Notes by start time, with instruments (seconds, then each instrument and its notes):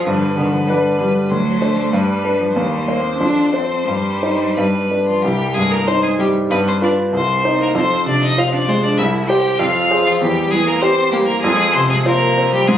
0.05 grand piano G2, cello D3, violin B4
0.36 grand piano D3, cello D#3
0.52 cello F3
0.67 cello G3, grand piano D4 B4
0.98 cello D3, grand piano G3
1.30 grand piano D2, cello F#3, violin C5
1.62 cello A3, grand piano D4 C5
1.92 grand piano G2, cello G3, violin B4
2.24 grand piano D4 B4
2.40 cello F3
2.54 grand piano D#2, cello G3, violin C5
2.87 cello A#3, grand piano C4 C5
3.03 cello C4
3.18 grand piano F2, cello D4
3.53 grand piano C4 C5, cello C4
3.86 grand piano G2, cello G3
4.23 grand piano D#4 C5
4.56 grand piano G2, violin B4
4.91 grand piano D4 B4
5.07 cello F3, violin F4
5.23 grand piano C2, cello G3, violin G4
5.54 grand piano G2, cello G#3, violin G#4
5.71 cello A#3, violin A#4
5.87 cello C4, grand piano D#4 C5, violin C5
6.03 cello G#3, violin G#4
6.19 cello G3, grand piano G3, violin G4
6.50 grand piano G2, cello B3, violin B4
6.66 cello C4, violin C5
6.81 cello D4, grand piano F4 B4, violin D5
7.13 grand piano C2, cello C4, violin C5
7.44 grand piano D#4 C5
7.61 cello A#3, violin A#4
7.75 grand piano F2, cello C4, violin C5
8.06 grand piano C3, cello D4, violin D5
8.22 cello D#4, violin D#5
8.37 grand piano F4 C5, cello F4, violin F5
8.52 cello D4, violin D5
8.67 grand piano G#3, cello C4, violin C5
8.83 cello D4, violin D5
8.97 grand piano C2, cello E4, violin E5
9.28 cello G4, grand piano G4 C5, violin G5
9.59 grand piano F2, cello F4, violin F5
9.91 grand piano G#4 C5
10.05 cello F3, violin F4
10.20 grand piano E2, cello G3, violin G4
10.51 grand piano E3, cello G#3, violin G#4
10.66 cello A#3, violin A#4
10.81 cello C4, grand piano G4 C5, violin C5
11.12 cello G3, grand piano A#3, violin G4
11.26 cello A#3, violin A#4
11.42 grand piano F2, cello G#3, violin G#4
11.74 grand piano C3, cello C4, violin C5
11.90 cello G#3, violin G#4
12.05 cello A#3, grand piano F4 C5, violin A#4
12.38 grand piano C4
12.53 cello G3, violin G4
12.68 grand piano G#2, cello G#3, violin G#4